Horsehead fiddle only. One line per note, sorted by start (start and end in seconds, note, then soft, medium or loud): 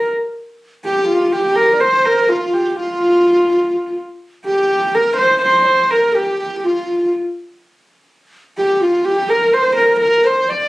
0.84 1.07 G4 medium
1.08 1.34 F4 medium
1.33 1.57 G4 medium
1.56 1.82 A#4 medium
1.80 2.07 C5 medium
2.05 2.31 A#4 loud
2.29 2.55 F4 medium
2.53 2.69 G4 medium
2.69 2.77 G4 medium
2.76 3.97 F4 medium
4.46 4.96 G4 medium
4.95 5.16 A#4 medium
5.17 5.40 C5 loud
5.42 5.92 C5 loud
5.91 6.17 A#4 medium
6.15 6.39 G4 medium
6.40 6.56 G4 medium
6.58 6.67 G4 medium
6.65 7.13 F4 medium
8.58 8.75 G4 medium
8.75 8.84 G4 medium
8.83 9.06 F4 medium
9.05 9.32 G4 medium
9.30 9.55 A#4 medium
9.53 9.75 C5 medium
9.76 9.99 A#4 medium
10.00 10.28 A#4 medium
10.27 10.52 C5 medium
10.50 10.68 D5 medium